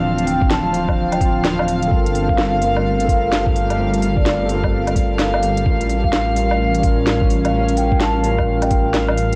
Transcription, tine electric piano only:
X:1
M:4/4
L:1/8
Q:"Swing 16ths" 1/4=128
K:Gdor
V:1 name="Tine electric piano"
[E,CF] z2 [F,CF]2 [F,CF]3 | [CFAB]3 [A,CFB] z [CFAB]3 | [A,CFB] z2 [CFAB]4- [CFAB] | [G,^CFB]3 [G,CFB] z [G,CFB]3 |
[G,^CFB] z2 [G,CFB]2 [G,CFB]3 |]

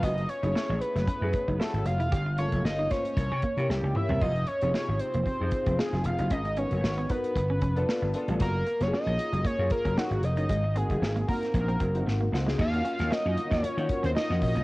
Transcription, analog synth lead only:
X:1
M:4/4
L:1/16
Q:"Swing 16ths" 1/4=115
K:Gblyd
V:1 name="Analog synth lead"
e2 d4 _c6 =A2 f2- | f2 d2 e2 d6 =G2 =e2 | e2 d4 c6 A2 f2 | e2 d4 _c8 z2 |
B3 d e4 d2 B2 G2 e2- | e2 A4 B2 B4 z4 | f4 e3 d4 c e2 e2 |]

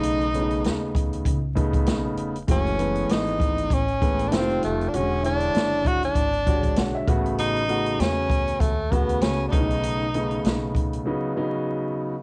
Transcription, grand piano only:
X:1
M:4/4
L:1/16
Q:"Swing 16ths" 1/4=98
K:Bmix
V:1 name="Grand piano"
z16 | z16 | z12 f e3 | z16 |
z16 |]
V:2 name="Grand piano"
[C,A,B,D]2 [C,A,B,CD]6 z2 [C,A,B,D]4 z2 | [E,G,A,F]2 [E,G,A,B,]6 z2 [E,G,A,B,]2 [_E,=G,A,=E=F]4 | [=D,G,CF]2 [D,G,Ec]6 z2 [D,=G,^G,Fc]4 [C,A,B,F]2- | [C,A,B,F]2 [C,A,B,F]6 z2 [C,A,B,F]4 [C,A,B,CD]2- |
[C,A,B,CD]2 [C,A,B,D]6 [C,F,B,D]2 [C,F,B,D]4 z2 |]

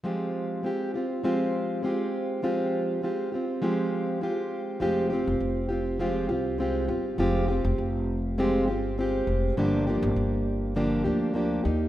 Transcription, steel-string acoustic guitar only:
X:1
M:4/4
L:1/8
Q:"Swing 16ths" 1/4=101
K:Fdor
V:1 name="Steel-string acoustic guitar"
[F,A,CFG]2 [A,CFG] [CFG] [F,A,CFG]2 [A,CFG]2 | [F,A,CFG]2 [A,CFG] [CFG] [F,A,CFG]2 [A,CFG]2 | [F,A,CFG] [CFG]2 [CFG] [F,A,CFG] [CFG] [A,CFG] [CFG] | [F,A,CFG] [CFG]3 [F,A,CFG] [CFG] [A,CFG]2 |
[G,,D,F,B,DG] [F,B,DG]3 [G,,D,F,B,DG] [F,B,DG] [F,B,DG] [B,EG] |]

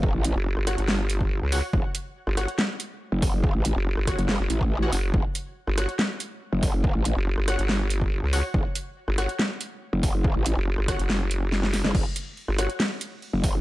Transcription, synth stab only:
X:1
M:4/4
L:1/16
Q:1/4=141
K:F#phr
V:1 name="Synth stab"
z6 [Fcf] z6 z [Fcf] z | z6 [Fcf] z8 z | z6 [Fcf] z6 [Fcf] z2 | z6 [Fcf] z8 z |
z6 [Fcf] z6 z [Fcf] z | z6 [Fcf] z8 z | z6 [Fcf] z8 z | z6 [Fcf] z8 z |]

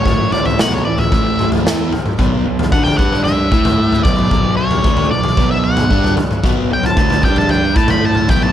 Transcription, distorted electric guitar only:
X:1
M:4/4
L:1/8
Q:1/4=113
K:Bm
V:1 name="Distorted electric guitar" clef=bass
[A,,E,A,]2 [B,,F,B,] [A,,E,] [A,,E,A,]2 [E,B,E] z | [B,,F,B,] [B,,F,] [D,A,D] [G,DG]2 [A,EA]2 [B,,F,B,]- | [B,,F,B,]2 [D,A,D] [B,,F,] [B,,F,B,]2 [G,DG] z | [B,,F,B,] [B,,F,] [D,A,D] [G,DG]2 [A,EA]2 [B,,F,B,] |]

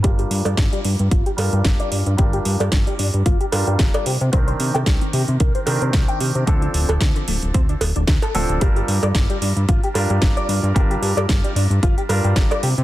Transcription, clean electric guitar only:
X:1
M:4/4
L:1/16
Q:"Swing 16ths" 1/4=112
K:Gm
V:1 name="Clean electric guitar"
G G z d z G, D z F G z G z d D z | G G z d z G, D z F G z G z d G z | c c z g z C G z B c z c z g G z | D D z A z D, A, z C D z D z A A, z |
G G z d z G, D z F G z G z d D z | G G z d z G, D z F G z G z d G z |]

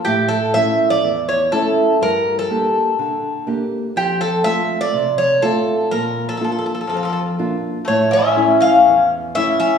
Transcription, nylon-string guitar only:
X:1
M:4/4
L:1/8
Q:1/4=123
K:none
V:1 name="Nylon-string guitar"
A,,2 [A,^CE]2 E,,2 [A,CE]2 | G,,2 [_B,DG]2 D,2 [B,DG]2 | F,,2 [A,CF]2 C,2 [A,CF]2 | _B,,2 [_B,DF]2 F,,2 [B,DF]2 |
A,,2 [A,^CE]2 E,,2 [A,CE]2 |]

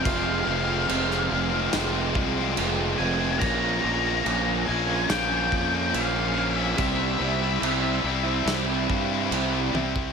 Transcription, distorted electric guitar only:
X:1
M:4/4
L:1/16
Q:1/4=71
K:Fm
V:1 name="Distorted electric guitar" clef=bass
[F,,C,F,A,C]2 [C,F,A,C] [F,A,C] [F,,C,F,A,C]2 [C,F,A,C] [F,A,C] [C,F,A,C] [F,A,C]2 [F,A,C] [F,,C,F,A,C]2 [C,F,A,C] [F,A,C] | [B,,F,B,D]2 [B,,F,B,D] [F,B,D] [B,,F,B,D]2 [B,,F,B,D] [F,B,D] [B,,F,B,D] [F,B,D]2 [F,B,D] [B,,F,B,D]2 [B,,F,B,D] [F,B,D] | [C,G,C=E]2 [C,G,CE] [G,CE] [C,G,CE]2 [C,G,CE] [G,CE] [C,G,CE] [G,CE]2 [G,CE] [C,G,CE]2 [C,G,CE] [G,CE] |]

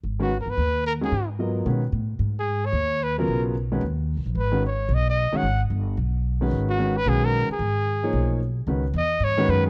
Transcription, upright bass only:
X:1
M:4/4
L:1/8
Q:"Swing" 1/4=222
K:G#dor
V:1 name="Upright bass" clef=bass
G,,,3 =G,,, D,,4 | G,,4 B,,2 =A,,2 | G,,4 D,,4 | B,,,4 D,,2- (3D,, B,,, A,,, |
G,,,4 B,,,3 z | G,,,2 =G,,,2 B,,,4 | G,,,4 B,,,3 z | G,,,4 B,,,4 |
[K:C#m] C,,2 E,,2 G,,2 F,,2 |]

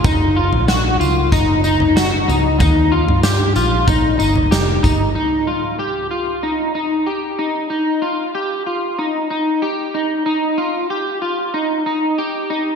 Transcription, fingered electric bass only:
X:1
M:4/4
L:1/16
Q:1/4=94
K:Ebdor
V:1 name="Fingered electric bass" clef=bass
G,,,3 B,,,3 D,,2 G,,,6 D,,2 | E,,3 =G,,3 B,,,4 =G,,,2 F,,,2 G,,,2 | [K:Ebmix] z16 | z16 |
z16 |]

